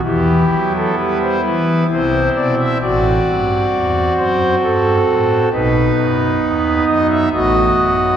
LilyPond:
<<
  \new Staff \with { instrumentName = "Pipe organ" } { \time 3/4 \key e \minor \tempo 4 = 66 << { g'8. a'16 b'16 c''16 b'8 c''8 d''16 e''16 | d''4. c''8 a'4 | b'4. dis''16 e''16 dis''4 | } \\ { <b e'>2 <c' e'>4 | <c' fis'>2. | <b dis'>2 <b fis'>4 | } >> }
  \new Staff \with { instrumentName = "Pipe organ" } { \clef bass \time 3/4 \key e \minor <e, e>8 fis8 g8 e8 <c, c>8 b,8 | <a,, a,>8 g,8 e,8 fis,8 g,8 a,8 | <b,, b,>8 fis,8 dis,8 fis,8 <a,, a,>8 fis,8 | }
>>